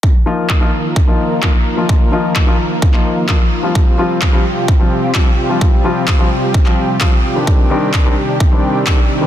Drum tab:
CP |----x-------x---|----x----x--x---|----x-------x---|----x----x--x---|
BD |o---o---o---o---|o---o---o---o---|o---o---o---o---|o---o---o---o---|

CP |----x-------x---|
BD |o---o---o---o---|